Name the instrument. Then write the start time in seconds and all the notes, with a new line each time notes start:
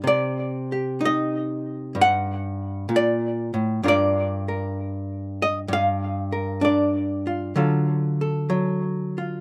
hollow-body jazz guitar
Already playing: G4
0.04 C3 D5
0.72 G4
1.01 D#4
1.05 D#5
1.95 G2
2.01 F#5
2.89 A#2
2.96 D5
3.54 A2
3.83 G2 D4 F4 A#4
3.88 D5
4.48 A#4
5.42 D#5
5.68 G2
5.73 F5
6.32 A#4
6.61 D4 D5
7.27 F4
7.56 D3 F#3 F4 A4
8.21 A4
8.50 F#3
9.18 F4